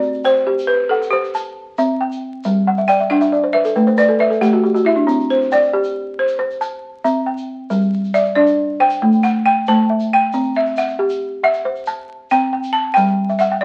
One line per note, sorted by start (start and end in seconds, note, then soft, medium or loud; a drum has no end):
0.00 0.24 C4 medium
0.00 0.26 D5 loud
0.00 shaker soft
0.14 shaker soft
0.24 0.66 C5 medium
0.24 0.90 G5 medium
0.24 shaker medium
0.36 shaker soft
0.47 0.90 G4 medium
0.59 shaker medium
0.67 0.90 B4 medium
0.89 1.12 A4 medium
0.89 1.57 F#5 medium
1.02 shaker medium
1.11 2.17 G4 medium
1.11 1.57 C5 medium
1.24 shaker soft
1.35 2.00 A5 medium
1.35 shaker medium
1.78 2.22 C4 medium
1.78 2.44 E5 medium
1.78 shaker medium
2.01 2.66 G5 medium
2.12 shaker medium
2.44 2.88 G3 medium
2.44 shaker medium
2.67 2.87 F#5 medium
2.77 2.98 E5 medium
2.77 shaker soft
2.88 3.09 D5 medium
2.88 3.11 G5 medium
2.88 shaker medium
2.99 3.20 E5 medium
2.99 shaker soft
3.10 3.54 D4 medium
3.10 3.55 F#5 loud
3.10 3.31 F#5 medium
3.10 shaker soft
3.21 3.41 E5 medium
3.21 shaker medium
3.32 3.53 D5 medium
3.32 shaker soft
3.44 3.64 C5 medium
3.53 3.75 B4 medium
3.53 3.99 E5 medium
3.65 3.85 A4 medium
3.65 shaker medium
3.76 4.20 A3 medium
3.76 3.96 B4 medium
3.76 shaker soft
3.87 4.07 C5 medium
3.87 shaker soft
3.97 4.18 B4 medium
3.97 4.20 D5 medium
3.97 shaker medium
4.09 4.29 A4 medium
4.19 4.40 B4 medium
4.19 4.43 E5 medium
4.19 shaker soft
4.30 4.51 A4 medium
4.30 shaker soft
4.41 4.85 A3 medium
4.41 4.62 G4 medium
4.41 4.87 F#5 medium
4.41 shaker medium
4.53 4.73 F#4 medium
4.64 4.84 G4 medium
4.64 shaker soft
4.74 4.95 F#4 medium
4.74 shaker soft
4.85 5.06 E4 medium
4.85 5.27 E5 medium
4.96 5.17 D4 medium
5.07 5.51 C4 medium
5.07 shaker medium
5.20 shaker soft
5.30 5.50 C5 medium
5.30 shaker soft
5.42 shaker soft
5.52 6.20 D5 medium
5.52 6.17 G5 medium
5.52 shaker medium
5.63 shaker soft
5.73 6.17 G4 medium
5.84 shaker medium
6.19 6.80 C5 medium
6.28 shaker medium
6.39 6.83 C5 medium
6.50 shaker soft
6.61 7.27 A5 medium
6.61 shaker medium
7.04 7.48 C4 medium
7.04 7.70 E5 medium
7.04 shaker medium
7.26 7.92 G5 medium
7.37 shaker medium
7.70 8.14 G3 medium
7.70 shaker medium
7.82 shaker soft
7.93 shaker soft
8.04 shaker soft
8.14 8.80 D5 medium
8.14 8.37 E5 medium
8.14 shaker medium
8.25 shaker soft
8.35 8.80 D4 medium
8.35 8.81 D5 medium
8.47 shaker medium
8.80 9.24 C5 medium
8.80 9.25 G5 loud
8.90 shaker medium
9.02 9.46 A3 medium
9.12 shaker soft
9.23 9.46 F#5 medium
9.23 9.90 F#5 medium
9.23 shaker medium
9.46 9.68 G5 loud
9.67 10.12 A3 medium
9.67 10.34 C5 medium
9.67 10.13 A5 loud
9.67 shaker medium
9.90 10.55 E5 medium
10.00 shaker medium
10.13 10.58 G5 loud
10.32 10.77 C4 medium
10.32 shaker medium
10.43 shaker soft
10.54 10.79 E5 medium
10.54 shaker soft
10.65 shaker soft
10.76 11.43 E5 medium
10.76 11.39 F#5 medium
10.76 shaker medium
10.88 shaker soft
10.99 11.43 G4 medium
11.10 shaker medium
11.43 12.05 E5 medium
11.43 12.09 F#5 medium
11.53 shaker medium
11.65 12.09 C5 medium
11.76 shaker soft
11.86 12.53 A5 medium
11.86 shaker medium
12.30 12.75 C4 medium
12.30 12.76 G5 loud
12.30 shaker medium
12.53 13.18 G5 medium
12.64 shaker medium
12.73 12.96 A5 loud
12.94 13.40 G3 medium
12.94 13.40 G5 loud
12.94 shaker medium
13.29 13.50 E5 medium
13.29 shaker soft
13.39 13.62 E5 medium
13.39 13.61 F#5 medium
13.39 shaker medium
13.52 13.64 G5 medium
13.61 13.64 D5 medium